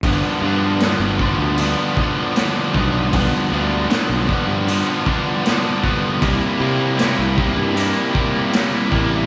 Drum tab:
HH |o-o-o-o-|o-o-o-o-|o-o-o-o-|
SD |--o---o-|--o---o-|--o---o-|
BD |o--o-o-o|o--o-o-o|o--o-o-o|